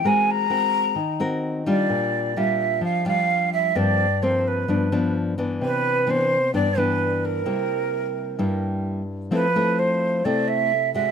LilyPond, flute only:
\new Staff \with { instrumentName = "Flute" } { \time 4/4 \key g \dorian \tempo 4 = 129 aes''8 bes''2 r4 d''8~ | d''4 e''4 f''8 f''4 e''8 | d''4 c''8 b'4. r4 | \key c \major b'4 c''4 d''8 b'4 bes'8~ |
bes'2~ bes'8 r4. | b'4 c''4 d''8 e''4 e''8 | }